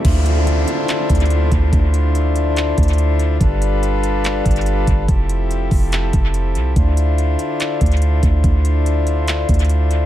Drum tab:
CC |x-------------------------------|--------------------------------|--------------------------------|--------------------------------|
HH |x---x---x---x---x---xxxxx---x---|x---x---x---x---x---xxxxx---x---|x---x---x---x---x---xxxxx---x---|x---x---x---o---x---x---x---x---|
CP |----------------x---------------|----------------x---------------|----------------x---------------|----------------x---------------|
BD |o-------------------o-------o---|o-------------------o-----------|o-------------------o-------o---|o-----------o-------o-----------|

CC |--------------------------------|--------------------------------|
HH |x---x---x---x---x---xxxxx---x---|x---x---x---x---x---xxxxx---x---|
CP |----------------x---------------|----------------x---------------|
BD |o-------------------o-------o---|o-------------------o-----------|